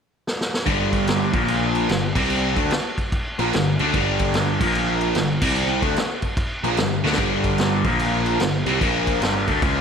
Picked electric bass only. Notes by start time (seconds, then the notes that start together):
0.67 G1
1.34 A#1
1.90 G1
2.16 C2
2.56 D2
3.39 A#1
3.54 G1
3.81 D2
3.94 G1
4.60 A#1
5.16 G1
5.42 C2
5.82 D2
6.64 A#1
6.79 G1
7.05 D2
7.18 G1
7.84 A#1
8.40 G1
8.65 C2
8.82 A#1
9.21 G1
9.48 D2
9.62 C#2